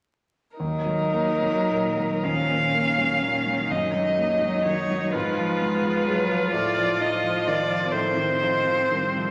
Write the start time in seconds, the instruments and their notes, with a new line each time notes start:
0.57 grand piano D#2, cello F#3, viola D#4, violin A#4
0.86 grand piano F#3
1.13 grand piano A#3
1.41 grand piano F#3
1.70 grand piano A#2
1.97 grand piano F#3
2.24 grand piano D#2, cello F3, viola C#4, violin F5
2.50 grand piano A#2
2.75 cello D#3, grand piano A#3
2.98 grand piano F#3
3.22 grand piano A#2, cello D#3
3.46 grand piano F#3
3.70 grand piano F#2, cello F#3, viola D#4, violin D#5
3.94 grand piano F#3
4.18 grand piano A#3
4.42 grand piano F#3
4.65 grand piano D#3, violin C#5
4.90 grand piano F#3
5.12 grand piano G#2, cello F3, viola F4, violin B4
5.38 grand piano F3
5.61 cello G#3, grand piano B3
5.83 grand piano F3
6.07 cello F#3, grand piano G#3
6.32 grand piano F3
6.53 grand piano A2, cello F3, violin D5
6.77 grand piano F3
7.01 grand piano D#4, violin D#5
7.24 grand piano F3
7.47 grand piano D#3, violin D5
7.69 grand piano F3
7.91 grand piano A2, cello D#3, viola C4, violin C5
8.17 grand piano D#3
8.42 cello F3, grand piano D#4
8.67 grand piano F3
8.91 grand piano D#3, cello G3
9.16 grand piano F3